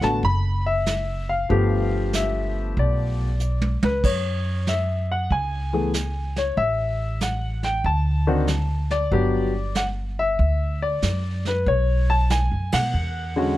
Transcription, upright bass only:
0.01 A1
0.23 F#1
1.50 G1
2.77 B1
3.83 C#2
4.04 F#2
5.31 C#2
6.57 A1
7.84 D2
9.12 G1
10.39 D2
11.02 F#2
11.66 B1
12.52 F#2
12.73 B2
12.94 E2

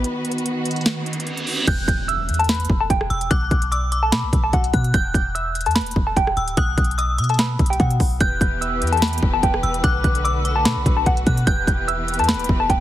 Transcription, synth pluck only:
1.68 G6
1.88 G6
2.08 E6
2.39 A5
2.49 B5
2.80 A5
2.90 G5
3.31 F#6
3.51 F#6
3.72 D6
4.03 A5
4.12 B5
4.44 A5
4.54 F#5
4.94 G6
5.14 G6
5.35 E6
5.66 A5
5.75 B5
6.07 A5
6.17 G5
6.58 F#6
6.78 F#6
6.98 D#6
7.30 A5
7.39 B5
7.70 G5
7.80 F#5
8.21 G6
8.41 G6
8.61 E6
8.92 A5
9.02 B5
9.34 A5
9.43 G5
9.84 F#6
10.04 F#6
10.24 D6
10.56 A5
10.65 B5
10.97 A5
11.07 F#5
11.47 G6
11.68 G6
11.88 E6
12.20 A5
12.28 B5
12.60 A5
12.70 G5

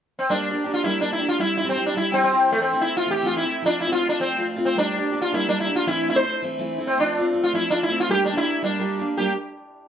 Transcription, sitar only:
0.19 C4
0.30 D4
0.74 F4
0.84 E4
1.01 D4
1.13 E4
1.29 F4
1.40 E4
1.58 E4
1.69 C4
1.86 D4
1.97 E4
2.14 C4
2.24 C4
2.52 A3
2.62 C4
2.81 E4
2.97 F4
3.11 G4
3.26 F4
3.37 E4
3.66 D4
3.81 E4
3.92 F4
4.09 D4
4.21 C4
4.65 C4
4.78 D4
5.22 F4
5.34 E4
5.49 D4
5.60 E4
5.76 F4
5.88 E4
6.09 E4
6.16 C5
6.87 C4
7.00 D4
7.43 F4
7.55 E4
7.70 D4
7.83 E4
8.00 F4
8.11 G4
8.25 D4
8.37 E4
8.64 D4
9.17 G4

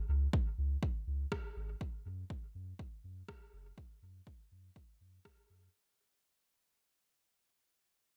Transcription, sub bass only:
0.09 C#2
0.58 C#2
1.07 C#2
1.56 G#1
2.06 F#2
2.55 F#2
3.04 F#2
3.53 F#1
4.02 F#2
4.52 F#2
5.01 F#2
5.50 F#2

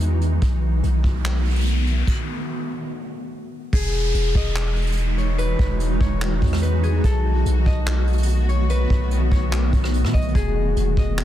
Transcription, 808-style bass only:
Already playing: E2
0.42 B1
0.83 B1
1.04 B1
3.73 E1
4.14 E1
4.35 E1
5.59 E1
6.01 E1
6.42 E2
7.04 B1
7.46 B1
7.66 B1
8.90 B1
9.32 B1
9.73 B1
10.04 B2
10.14 B1
10.35 E1
10.76 E1
10.97 E1

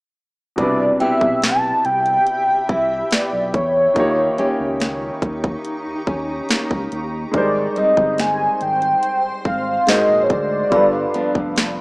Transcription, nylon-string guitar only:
0.58 C3
1.00 B3 E4 G4
2.69 E4
3.11 B3
3.96 D#3
4.38 A#3 C#4 G4
6.07 C#4
6.49 A#3
7.76 G3 C4 D#4
9.45 C4
9.88 G#2
10.72 G2
11.14 F3 B3 D4

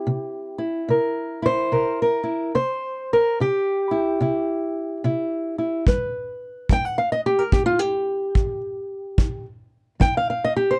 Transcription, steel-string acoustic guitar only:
Already playing: C4 E4 G4
0.07 C3
0.58 E4
0.89 C3 A#4
1.42 E4 C5
1.72 C3 A#4
2.02 A#4
2.23 E4
2.55 C3 C5
3.13 A#4
3.40 C3 G4
3.91 E4
4.21 C3 E4
5.04 C3 E4
5.58 E4
5.87 G3 B4
6.70 G3 G5
6.85 F#5
6.98 F5
7.12 D#5
7.26 G4
7.39 A#4
7.53 G4
7.66 F4
7.79 G4
9.18 F3
10.00 F3 G5
10.17 F5
10.30 F5
10.44 D#5
10.56 G4
10.71 C5

